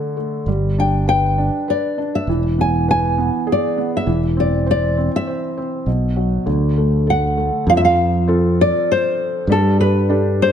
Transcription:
Already playing: D3 A3 A4
0.17 A3
0.46 G1 G3
0.78 D4 G5
1.08 B4 G5
1.38 D4
1.68 B4 D5
1.98 D4
2.15 E5
2.27 E1 E3
2.58 B3 G#5
2.88 B4 G#5
3.18 B3
3.47 G#4
3.52 D5
3.78 B3
3.97 E5
4.07 E1 E3
4.37 C4 D5
4.66 C5
4.71 D5
4.97 C4
5.16 E5
5.27 C5
5.57 C4
5.86 B1 B2
6.16 F#3
6.46 D2 D3
6.78 A3
7.07 A4 F#5
7.37 A3
7.67 F2 F3 F5
7.77 E5
7.85 F5
8.28 C4 F4 A4
8.61 D5
8.92 C5
9.47 G2 G3
9.52 A4
9.80 B4
10.09 D4 G4 A4
10.42 C5

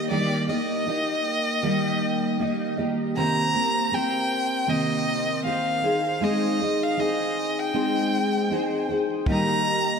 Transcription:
Already playing: G4
0.10 D#3 G3 A#3 D#4 G4 D5
0.48 A#3 D#4 G4 D#5
0.86 A#3 D#4 G4 D#5
1.62 D#3 G3 A#3 D#4 G4 D#5
2.39 A#3 D#4 G4 D#5
2.77 A#3 D#4 G4 D#5
3.16 C3 D#3 A#3 C4 G4 C5 A#5
3.53 A#3 C4 G4 C5
3.91 A#3 C4 G4 C5 G5
4.67 C3 D#3 A#3 C4 G4 C5 D#5
5.44 A#3 C4 G4 C5 F5
5.82 D#4 G#4 C5
6.20 G#3 C4 D#4 G#4 C5 D#5
6.59 D#4 G#4 C5
6.83 F5
6.97 C4 D#4 G#4 C5 D#5
7.59 G5
7.74 G#3 C4 D#4 G#4 C5
8.50 C4 D#4 G#4 C5
8.88 D#4 G#4 C5
9.26 D#3 G3 A#3 D#4 G4 D#5, kick
9.31 A#5

